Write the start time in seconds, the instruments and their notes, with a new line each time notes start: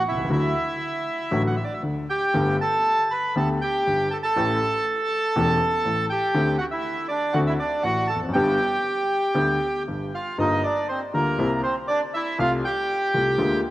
0.08 grand piano B1, bandoneon E4 E5
0.18 grand piano C2
0.24 grand piano C#2
0.30 grand piano D2 D3 F#3 A3 F#4, bandoneon E4 E5
1.31 grand piano A1 A2 D3 F#3 A3 F#4
1.47 bandoneon F#5
1.56 bandoneon E5
1.64 bandoneon D5
1.74 bandoneon E5
1.83 grand piano D2 D3
2.10 bandoneon G4 G5
2.34 grand piano G1 G2 D3 A3 B3 G4
2.61 bandoneon A4 A5
3.11 bandoneon B4 B5
3.36 grand piano D2 D3 A3 B3 G4, bandoneon A4 A5
3.61 bandoneon G4 G5
3.87 grand piano G1 G2
4.11 bandoneon A4 A5
4.23 bandoneon A4 A5
4.36 grand piano A1 A2 E3 A3 C#4 G4
5.36 grand piano E1 E2 E3 A3 C#4 G4
5.85 grand piano A1 A2
6.10 bandoneon G4 G5
6.34 grand piano D2 D3 A3 C4 G4
6.58 bandoneon F#4 F#5
6.71 bandoneon E4 E5
7.08 bandoneon D4 D5
7.33 grand piano D2 D3 A3 C4 F#4, bandoneon F#4 F#5
7.47 bandoneon E4 E5
7.59 bandoneon D4 D5
7.83 grand piano A1 A2, bandoneon F#4 F#5
8.07 bandoneon A4 A5
8.15 grand piano E2
8.22 grand piano F2
8.28 grand piano F#2
8.33 grand piano G1 G2 D3 G3 B3 G4, bandoneon G4 G5
9.34 grand piano D2 D3 G3 B3 G4
9.88 grand piano G1 G2
10.15 bandoneon F4 F5
10.38 grand piano G1 G2 D3 G3 A#3 F4, bandoneon D#4 D#5
10.64 bandoneon D4 D5
10.89 bandoneon C4 C5
11.14 grand piano D2 D3 G3 A#3 F4, bandoneon A#3 A#4
11.38 grand piano C2 C3 G3 A#3 E4
11.63 bandoneon C4 C5
11.88 bandoneon D4 D5
12.14 bandoneon E4 E5
12.39 grand piano C2 C3 G3 A3 F4, bandoneon F4 F5
12.65 bandoneon G4 G5
13.14 grand piano C2 C3 G3 A3 F4
13.38 grand piano D2 D3 G#3 A#3 F4